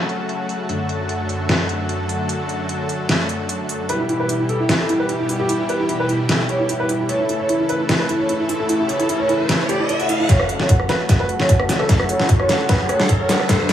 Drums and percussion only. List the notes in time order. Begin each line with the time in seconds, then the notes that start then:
0.09 closed hi-hat
0.29 closed hi-hat
0.49 open hi-hat
0.69 closed hi-hat
0.89 closed hi-hat
1.09 closed hi-hat
1.29 closed hi-hat
1.49 snare, closed hi-hat
1.69 closed hi-hat
1.89 closed hi-hat
2.09 open hi-hat
2.29 closed hi-hat
2.49 closed hi-hat
2.69 closed hi-hat
2.89 closed hi-hat
3.09 snare, closed hi-hat
3.29 closed hi-hat
3.49 closed hi-hat
3.69 open hi-hat
3.89 closed hi-hat
4.09 closed hi-hat
4.29 closed hi-hat
4.49 closed hi-hat
4.69 snare, closed hi-hat
4.89 closed hi-hat
5.09 closed hi-hat
5.29 open hi-hat
5.49 closed hi-hat
5.69 closed hi-hat
5.89 closed hi-hat
6.09 closed hi-hat
6.29 snare, closed hi-hat
6.49 closed hi-hat
6.69 closed hi-hat
6.89 open hi-hat
7.09 closed hi-hat
7.29 closed hi-hat
7.49 closed hi-hat
7.69 closed hi-hat
7.89 snare, closed hi-hat
8.09 closed hi-hat
8.29 closed hi-hat
8.49 open hi-hat
8.69 closed hi-hat
8.89 closed hi-hat
9.00 closed hi-hat
9.09 closed hi-hat
9.29 closed hi-hat
9.49 snare, closed hi-hat
9.69 closed hi-hat
9.89 closed hi-hat
10.00 closed hi-hat
10.09 open hi-hat
10.29 kick, snare, closed hi-hat
10.40 cross-stick
10.49 closed hi-hat
10.60 snare
10.69 kick, closed hi-hat
10.80 cross-stick
10.89 snare, closed hi-hat
11.09 kick, snare, closed hi-hat
11.29 closed hi-hat
11.40 snare
11.49 kick, closed hi-hat
11.60 cross-stick
11.69 snare, open hi-hat
11.80 cross-stick
11.89 kick, snare, closed hi-hat
12.00 cross-stick
12.09 closed hi-hat
12.20 snare
12.29 kick, closed hi-hat
12.40 cross-stick
12.49 snare, closed hi-hat
12.69 kick, snare, closed hi-hat
12.89 cross-stick, closed hi-hat
13.00 snare
13.09 kick, closed hi-hat
13.29 snare, open hi-hat
13.40 cross-stick
13.49 kick, snare, closed hi-hat
13.69 snare, closed hi-hat